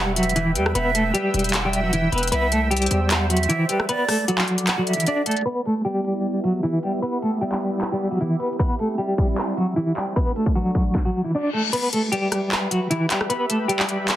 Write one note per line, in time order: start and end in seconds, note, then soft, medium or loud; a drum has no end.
0.00 0.57 E1 loud
0.00 0.13 G3 medium
0.00 0.13 G4 medium
0.00 2.29 B4 medium
0.00 3.85 E5 medium
0.00 0.15 F#5 medium
0.00 3.85 G5 medium
0.00 3.85 E6 medium
0.16 0.32 F#3 medium
0.16 0.31 F#4 medium
0.16 0.53 E5 medium
0.16 closed hi-hat medium
0.23 closed hi-hat medium
0.29 closed hi-hat soft
0.36 0.51 E3 medium
0.36 0.51 E4 loud
0.36 closed hi-hat medium
0.55 0.74 E2 loud
0.55 0.71 G3 medium
0.55 0.70 G4 medium
0.55 0.74 B4 medium
0.55 closed hi-hat medium
0.66 cross-stick loud
0.75 1.13 E1 loud
0.75 0.90 B3 medium
0.75 0.90 B4 loud
0.75 1.12 E5 loud
0.75 closed hi-hat medium
0.95 1.10 A3 medium
0.95 1.10 A4 medium
0.95 closed hi-hat medium
1.14 1.61 G3 medium
1.14 1.61 G4 medium
1.14 closed hi-hat medium
1.34 2.09 E1 loud
1.34 closed hi-hat medium
1.39 closed hi-hat medium
1.44 closed hi-hat medium
1.49 closed hi-hat medium
1.54 1.73 F#5 medium
1.54 clap loud
1.54 closed hi-hat medium
1.65 1.80 G3 medium
1.65 1.79 G4 medium
1.73 2.10 E5 medium
1.73 closed hi-hat medium
1.83 1.91 F#3 medium
1.83 1.90 F#4 medium
1.93 2.08 E3 medium
1.93 2.08 E4 medium
1.93 closed hi-hat medium
2.12 2.31 E1 loud
2.12 2.27 B3 medium
2.12 2.27 B4 medium
2.12 2.31 B4 medium
2.12 closed hi-hat soft
2.18 closed hi-hat medium
2.23 closed hi-hat medium
2.27 closed hi-hat medium
2.32 2.88 C2 loud
2.32 2.47 B3 medium
2.32 2.47 B4 loud
2.32 3.87 C5 medium
2.32 2.69 E5 loud
2.32 closed hi-hat medium
2.52 2.67 A3 medium
2.52 2.67 A4 medium
2.52 closed hi-hat medium
2.71 3.27 G3 medium
2.71 3.26 G4 medium
2.71 closed hi-hat medium
2.77 closed hi-hat medium
2.82 closed hi-hat medium
2.86 closed hi-hat medium
2.91 3.47 E2 loud
2.91 closed hi-hat medium
3.10 3.29 F#5 medium
3.10 clap loud
3.10 closed hi-hat medium
3.30 3.45 F#3 medium
3.30 3.44 F#4 medium
3.30 3.67 E5 medium
3.30 closed hi-hat medium
3.37 closed hi-hat medium
3.43 closed hi-hat medium
3.49 3.64 E3 medium
3.49 3.64 E4 loud
3.49 closed hi-hat medium
3.69 3.84 G3 medium
3.69 3.84 G4 medium
3.69 3.88 B4 medium
3.69 closed hi-hat medium
3.80 cross-stick loud
3.89 4.04 B3 medium
3.89 5.44 A4 medium
3.89 4.04 B4 loud
3.89 4.26 D5 loud
3.89 5.44 D5 medium
3.89 5.44 F#5 medium
3.89 5.44 D6 medium
3.89 closed hi-hat medium
4.09 4.24 A3 medium
4.09 4.23 A4 medium
4.09 cross-stick medium
4.09 open hi-hat medium
4.28 4.75 F#3 medium
4.28 4.75 F#4 medium
4.28 closed hi-hat medium
4.38 clap medium
4.48 closed hi-hat soft
4.58 closed hi-hat medium
4.67 4.86 F#5 medium
4.67 clap loud
4.67 closed hi-hat medium
4.78 4.93 F#3 medium
4.78 4.93 F#4 medium
4.87 5.24 E5 medium
4.87 closed hi-hat medium
4.93 5.04 E4 medium
4.93 closed hi-hat medium
4.98 5.04 E3 medium
4.98 closed hi-hat medium
5.06 5.22 D4 medium
5.06 5.22 D5 medium
5.06 closed hi-hat medium
5.26 5.41 A3 medium
5.26 5.41 A4 medium
5.26 5.45 D5 medium
5.26 closed hi-hat medium
5.31 closed hi-hat medium
5.37 closed hi-hat soft
5.41 closed hi-hat soft
5.46 8.56 B3 medium
5.46 5.61 B3 medium
5.46 8.56 E4 medium
5.46 10.12 G4 medium
5.46 5.60 B4 loud
5.46 8.56 E5 medium
5.46 closed hi-hat medium
5.65 5.81 A3 medium
5.65 5.81 A4 medium
5.65 closed hi-hat medium
5.85 6.41 G3 medium
5.85 6.40 G4 medium
5.85 closed hi-hat medium
6.04 closed hi-hat medium
6.44 6.59 F#3 medium
6.44 6.58 F#4 medium
6.44 closed hi-hat medium
6.63 6.78 E3 medium
6.63 6.78 E4 medium
6.63 closed hi-hat medium
6.83 6.98 G3 medium
6.83 6.98 G4 medium
6.83 closed hi-hat medium
7.02 7.18 B3 medium
7.02 7.17 B4 loud
7.02 closed hi-hat medium
7.22 7.38 A3 medium
7.22 7.37 A4 medium
7.22 closed hi-hat medium
7.41 7.89 G3 medium
7.41 7.88 G4 medium
7.41 closed hi-hat medium
7.52 clap medium
7.61 closed hi-hat medium
7.81 clap loud
7.81 closed hi-hat medium
7.92 8.07 G3 medium
7.92 8.07 G4 medium
8.11 8.18 F#3 medium
8.11 8.18 F#4 medium
8.20 8.36 E3 medium
8.20 8.35 E4 medium
8.20 closed hi-hat medium
8.40 8.55 B3 medium
8.40 8.54 B4 medium
8.40 closed hi-hat medium
8.46 closed hi-hat medium
8.53 closed hi-hat medium
8.59 8.75 B3 medium
8.59 10.15 C4 medium
8.59 10.15 E4 medium
8.59 8.74 B4 medium
8.59 10.15 E5 medium
8.59 kick loud
8.59 closed hi-hat soft
8.66 closed hi-hat soft
8.72 closed hi-hat soft
8.79 8.95 A3 medium
8.79 8.94 A4 medium
8.79 closed hi-hat medium
8.98 9.54 G3 medium
8.98 9.54 G4 medium
8.98 closed hi-hat medium
9.18 kick medium
9.18 closed hi-hat medium
9.38 clap loud
9.57 9.72 F#3 medium
9.57 9.72 F#4 medium
9.57 closed hi-hat medium
9.76 9.92 E3 medium
9.76 9.91 E4 loud
9.76 closed hi-hat medium
9.96 10.12 G3 medium
9.96 10.11 G4 medium
9.96 clap medium
9.96 closed hi-hat medium
10.16 10.94 A3 medium
10.16 10.31 B3 medium
10.16 10.94 D4 medium
10.16 10.94 F#4 medium
10.16 10.31 B4 loud
10.16 10.94 D5 medium
10.16 kick loud
10.16 closed hi-hat medium
10.36 10.51 A3 medium
10.36 10.51 A4 medium
10.36 closed hi-hat medium
10.46 kick medium
10.55 11.02 F#3 medium
10.55 11.02 F#4 medium
10.55 closed hi-hat medium
10.66 closed hi-hat medium
10.75 kick medium
10.75 closed hi-hat medium
10.95 kick loud
10.95 snare medium
10.95 reverse cymbal medium
11.05 11.20 F#3 medium
11.05 11.20 F#4 medium
11.24 11.32 E3 medium
11.24 11.31 E4 medium
11.35 11.49 D4 medium
11.35 11.50 D5 medium
11.53 11.69 A3 medium
11.53 11.68 A4 medium
11.73 11.88 B3 medium
11.73 14.16 G4 medium
11.73 11.88 B4 loud
11.73 14.16 B4 medium
11.73 14.16 E5 medium
11.73 14.16 B5 medium
11.73 closed hi-hat medium
11.73 crash medium
11.93 12.08 A3 medium
11.93 12.08 A4 medium
11.93 closed hi-hat medium
12.12 12.68 G3 medium
12.12 12.67 G4 medium
12.12 closed hi-hat medium
12.32 cross-stick medium
12.32 closed hi-hat medium
12.52 clap loud
12.71 12.86 F#3 medium
12.71 12.86 F#4 medium
12.71 closed hi-hat medium
12.90 13.06 E3 medium
12.90 13.05 E4 loud
12.90 closed hi-hat medium
13.10 13.26 G3 medium
13.10 13.25 G4 medium
13.10 clap medium
13.10 closed hi-hat medium
13.21 cross-stick loud
13.30 13.45 B3 medium
13.30 13.45 B4 loud
13.30 closed hi-hat medium
13.50 13.65 A3 medium
13.50 13.64 A4 medium
13.50 closed hi-hat medium
13.68 14.16 G3 medium
13.68 14.15 G4 medium
13.68 closed hi-hat medium
13.79 clap medium
13.89 closed hi-hat medium
14.08 clap loud
14.08 closed hi-hat medium